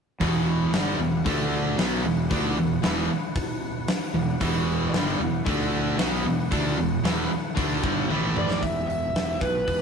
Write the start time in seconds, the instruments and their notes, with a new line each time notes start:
0.20 fingered electric bass E1, overdriven electric guitar E2 B2 E3, tonewheel organ E4 B4 F#5, kick, open hi-hat
0.72 fingered electric bass G1, overdriven electric guitar G2 D3 G3, snare, open hi-hat
0.98 fingered electric bass E1, overdriven electric guitar E2 B2
1.24 fingered electric bass D2, overdriven electric guitar D3 A3 D4, tonewheel organ D4 A4 E5, kick, open hi-hat
1.77 fingered electric bass B1, overdriven electric guitar B2 F#3 B3, tonewheel organ E4 B4 F#5, snare, open hi-hat
2.03 fingered electric bass E1, overdriven electric guitar E2 B2
2.30 fingered electric bass D2, overdriven electric guitar D3 A3 D4, kick, open hi-hat
2.56 fingered electric bass E1, overdriven electric guitar E2 B2
2.82 fingered electric bass E1, overdriven electric guitar E2 B2 E3, snare, open hi-hat
3.36 kick, open hi-hat
3.88 snare, open hi-hat
4.13 fingered electric bass E1, overdriven electric guitar E2 B2
4.40 fingered electric bass E1, overdriven electric guitar E2 B2 E3, kick, open hi-hat
4.93 fingered electric bass G1, overdriven electric guitar G2 D3 G3, snare, open hi-hat
5.19 fingered electric bass E1, overdriven electric guitar E2 B2
5.44 fingered electric bass D2, overdriven electric guitar D3 A3 D4, tonewheel organ D4 A4 E5, kick, open hi-hat
5.97 fingered electric bass B1, overdriven electric guitar B2 F#3 B3, tonewheel organ E4 B4 F#5, snare, open hi-hat
6.24 fingered electric bass E1, overdriven electric guitar E2 B2
6.51 fingered electric bass D2, overdriven electric guitar D3 A3 D4, kick, open hi-hat
6.77 fingered electric bass E1, overdriven electric guitar E2 B2
7.03 fingered electric bass E1, overdriven electric guitar E2 B2 E3, snare, open hi-hat
7.55 fingered electric bass D2, overdriven electric guitar D3 A3 D4, kick, open hi-hat
7.82 fingered electric bass G1, overdriven electric guitar G2 D3 G3, kick
8.08 fingered electric bass A1, overdriven electric guitar A2 E3 A3, tonewheel organ A3, high tom
8.37 lead electric guitar D5, mid tom
8.50 snare
8.62 fingered electric bass E1, lead electric guitar E5, kick, open hi-hat
8.87 lead electric guitar E5, open hi-hat
9.14 fingered electric bass E1, snare, open hi-hat
9.41 fingered electric bass B1, lead electric guitar B4, kick, open hi-hat
9.67 fingered electric bass E1, kick, open hi-hat